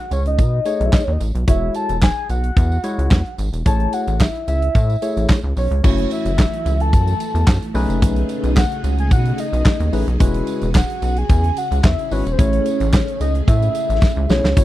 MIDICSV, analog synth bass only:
0, 0, Header, 1, 2, 480
1, 0, Start_track
1, 0, Tempo, 545455
1, 1300, Time_signature, 4, 2, 24, 8
1, 12887, End_track
2, 0, Start_track
2, 0, Title_t, "Analog synth bass"
2, 0, Program_c, 0, 38
2, 98, Note_on_c, 0, 37, 81
2, 339, Note_on_c, 0, 47, 97
2, 352, Note_off_c, 0, 37, 0
2, 526, Note_off_c, 0, 47, 0
2, 707, Note_on_c, 0, 35, 91
2, 795, Note_off_c, 0, 35, 0
2, 947, Note_on_c, 0, 39, 87
2, 1035, Note_off_c, 0, 39, 0
2, 1060, Note_on_c, 0, 33, 84
2, 1159, Note_off_c, 0, 33, 0
2, 1186, Note_on_c, 0, 35, 88
2, 1274, Note_off_c, 0, 35, 0
2, 1300, Note_on_c, 0, 28, 96
2, 1487, Note_off_c, 0, 28, 0
2, 1667, Note_on_c, 0, 28, 96
2, 1854, Note_off_c, 0, 28, 0
2, 2020, Note_on_c, 0, 35, 84
2, 2207, Note_off_c, 0, 35, 0
2, 2259, Note_on_c, 0, 40, 115
2, 2446, Note_off_c, 0, 40, 0
2, 2625, Note_on_c, 0, 37, 84
2, 2714, Note_off_c, 0, 37, 0
2, 2738, Note_on_c, 0, 40, 112
2, 2838, Note_off_c, 0, 40, 0
2, 2978, Note_on_c, 0, 32, 94
2, 3078, Note_off_c, 0, 32, 0
2, 3105, Note_on_c, 0, 28, 84
2, 3194, Note_off_c, 0, 28, 0
2, 3220, Note_on_c, 0, 33, 104
2, 3407, Note_off_c, 0, 33, 0
2, 3585, Note_on_c, 0, 33, 109
2, 3773, Note_off_c, 0, 33, 0
2, 3940, Note_on_c, 0, 37, 72
2, 4127, Note_off_c, 0, 37, 0
2, 4180, Note_on_c, 0, 45, 108
2, 4367, Note_off_c, 0, 45, 0
2, 4548, Note_on_c, 0, 33, 90
2, 4635, Note_off_c, 0, 33, 0
2, 4785, Note_on_c, 0, 37, 92
2, 4874, Note_off_c, 0, 37, 0
2, 4898, Note_on_c, 0, 35, 91
2, 4998, Note_off_c, 0, 35, 0
2, 5024, Note_on_c, 0, 37, 96
2, 5113, Note_off_c, 0, 37, 0
2, 5141, Note_on_c, 0, 30, 102
2, 5327, Note_off_c, 0, 30, 0
2, 5502, Note_on_c, 0, 30, 106
2, 5691, Note_off_c, 0, 30, 0
2, 5857, Note_on_c, 0, 37, 94
2, 6098, Note_on_c, 0, 42, 102
2, 6111, Note_off_c, 0, 37, 0
2, 6286, Note_off_c, 0, 42, 0
2, 6463, Note_on_c, 0, 40, 89
2, 6553, Note_off_c, 0, 40, 0
2, 6576, Note_on_c, 0, 42, 111
2, 6677, Note_off_c, 0, 42, 0
2, 6816, Note_on_c, 0, 35, 107
2, 6916, Note_off_c, 0, 35, 0
2, 6943, Note_on_c, 0, 30, 84
2, 7060, Note_on_c, 0, 35, 111
2, 7073, Note_off_c, 0, 30, 0
2, 7247, Note_off_c, 0, 35, 0
2, 7423, Note_on_c, 0, 35, 102
2, 7611, Note_off_c, 0, 35, 0
2, 7778, Note_on_c, 0, 37, 92
2, 8018, Note_on_c, 0, 47, 111
2, 8031, Note_off_c, 0, 37, 0
2, 8206, Note_off_c, 0, 47, 0
2, 8383, Note_on_c, 0, 35, 97
2, 8473, Note_off_c, 0, 35, 0
2, 8624, Note_on_c, 0, 39, 93
2, 8713, Note_off_c, 0, 39, 0
2, 8737, Note_on_c, 0, 33, 87
2, 8837, Note_off_c, 0, 33, 0
2, 8864, Note_on_c, 0, 35, 88
2, 8953, Note_off_c, 0, 35, 0
2, 8979, Note_on_c, 0, 28, 98
2, 9166, Note_off_c, 0, 28, 0
2, 9347, Note_on_c, 0, 28, 98
2, 9534, Note_off_c, 0, 28, 0
2, 9700, Note_on_c, 0, 35, 87
2, 9887, Note_off_c, 0, 35, 0
2, 9940, Note_on_c, 0, 40, 117
2, 10127, Note_off_c, 0, 40, 0
2, 10307, Note_on_c, 0, 37, 91
2, 10395, Note_off_c, 0, 37, 0
2, 10418, Note_on_c, 0, 40, 109
2, 10518, Note_off_c, 0, 40, 0
2, 10660, Note_on_c, 0, 32, 92
2, 10759, Note_off_c, 0, 32, 0
2, 10788, Note_on_c, 0, 28, 87
2, 10876, Note_off_c, 0, 28, 0
2, 10900, Note_on_c, 0, 33, 99
2, 11087, Note_off_c, 0, 33, 0
2, 11268, Note_on_c, 0, 33, 118
2, 11455, Note_off_c, 0, 33, 0
2, 11619, Note_on_c, 0, 37, 77
2, 11807, Note_off_c, 0, 37, 0
2, 11860, Note_on_c, 0, 45, 107
2, 12047, Note_off_c, 0, 45, 0
2, 12227, Note_on_c, 0, 33, 98
2, 12315, Note_off_c, 0, 33, 0
2, 12467, Note_on_c, 0, 37, 103
2, 12555, Note_off_c, 0, 37, 0
2, 12579, Note_on_c, 0, 35, 92
2, 12679, Note_off_c, 0, 35, 0
2, 12706, Note_on_c, 0, 37, 98
2, 12795, Note_off_c, 0, 37, 0
2, 12820, Note_on_c, 0, 30, 102
2, 12887, Note_off_c, 0, 30, 0
2, 12887, End_track
0, 0, End_of_file